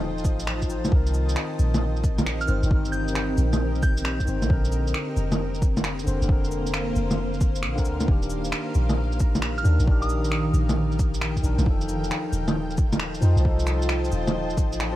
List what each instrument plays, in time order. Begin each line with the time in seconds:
Already playing: 808-style bass D#1, tine electric piano F3 D#4 A4 C5, ambient pad F4 C5 D#5 G5 A5
0.18 shaker
0.24 808-style bass A1, kick, cabasa
0.40 shaker
0.47 finger snap
0.62 kick, shaker
0.67 tine electric piano F3 D#4, cabasa
0.72 tine electric piano C5
0.85 tine electric piano D#3, low bongo, shaker
0.91 808-style bass C2, ambient pad C4, tine electric piano C4, kick
0.96 tine electric piano A#4
1.07 ambient pad G4, shaker
1.14 cabasa
1.29 ambient pad A#4, shaker
1.36 finger snap
1.59 808-style bass A#1, cabasa
1.74 low bongo, shaker
1.96 shaker
2.04 kick, cabasa
2.18 low bongo, shaker
2.26 finger snap
2.41 synth bell F6, shaker
2.47 808-style bass G1, tine electric piano D#3 C4 C5, synth bell F6, cabasa
2.63 808-style bass G1, tine electric piano D#3, shaker
2.70 tine electric piano C4, kick
2.75 tine electric piano A#4
2.85 shaker
2.92 synth bell G6, cabasa
3.08 shaker
3.15 finger snap
3.38 808-style bass A#1, cabasa
3.53 low bongo, shaker
3.75 shaker
3.83 synth bell G6, kick, cabasa
3.97 shaker
4.05 finger snap
4.20 kick, shaker
4.25 808-style bass G1, tine electric piano D#3 C4, cabasa
4.29 tine electric piano C5
4.42 808-style bass A#1, tine electric piano D3, low bongo, shaker
4.48 808-style bass A#1, ambient pad A#3, tine electric piano C4, kick
4.53 tine electric piano A#4
4.65 ambient pad C5, shaker
4.72 cabasa
4.87 shaker
4.94 finger snap
5.16 808-style bass F1, cabasa
5.29 ambient pad F5, low bongo, shaker
5.54 shaker
5.62 kick, cabasa
5.77 low bongo, shaker
5.84 finger snap
5.99 shaker
6.04 808-style bass F1, tine electric piano D3 C4 C5, cabasa
6.22 808-style bass F1, tine electric piano D3, shaker
6.28 tine electric piano C4, kick
6.32 tine electric piano A#4
6.44 shaker
6.52 cabasa
6.67 shaker
6.74 finger snap
6.96 808-style bass F1, cabasa
7.11 low bongo, shaker
7.34 shaker
7.41 kick, cabasa
7.55 shaker
7.63 808-style bass A#1, finger snap
7.75 tine electric piano D3 C4, kick, shaker
7.79 tine electric piano A#4
7.85 808-style bass D2, cabasa
8.00 tine electric piano D#3, low bongo, shaker
8.07 808-style bass D#1, ambient pad D#3, tine electric piano D4 G4, kick
8.22 shaker
8.30 cabasa
8.45 shaker
8.52 finger snap
8.75 808-style bass A#1, cabasa
8.89 low bongo, shaker
9.12 shaker
9.20 kick, cabasa
9.35 low bongo, shaker
9.42 finger snap
9.58 synth bell F6, shaker
9.63 808-style bass D#2, tine electric piano D#3 D4 A#4, synth bell F6, cabasa
9.70 ambient pad G5
9.80 808-style bass A#1, tine electric piano D#3, shaker
9.87 tine electric piano D4 G4, kick
10.02 synth bell D#6, shaker
10.09 cabasa
10.25 shaker
10.32 finger snap
10.54 808-style bass A#1, cabasa
10.69 low bongo, shaker
10.92 shaker
10.99 kick, cabasa
11.14 shaker
11.21 finger snap
11.36 kick, shaker
11.42 808-style bass A#1, tine electric piano D#3 D4 A#4, cabasa
11.58 808-style bass A#1, low bongo, shaker
11.62 808-style bass F1, tine electric piano F3
11.66 tine electric piano D#4, ambient pad F4, kick
11.70 tine electric piano A4
11.79 ambient pad C5 D#5, shaker
11.89 cabasa
12.04 ambient pad A5, shaker
12.11 finger snap
12.32 808-style bass D#1, cabasa
12.48 low bongo, shaker
12.70 shaker
12.77 kick, cabasa
12.92 low bongo, shaker
12.99 finger snap
13.14 shaker
13.21 808-style bass F2, tine electric piano F3 D#4, cabasa
13.25 tine electric piano C5
13.37 808-style bass C2, shaker
13.41 tine electric piano F3
13.45 tine electric piano D#4, kick
13.49 tine electric piano A4
13.59 shaker
13.67 finger snap, cabasa
13.82 shaker
13.89 finger snap
14.05 cabasa, shaker
14.12 808-style bass D#1, cabasa
14.27 low bongo, shaker
14.50 shaker
14.57 808-style bass A1, kick, cabasa
14.72 shaker
14.80 finger snap
14.93 tine electric piano F3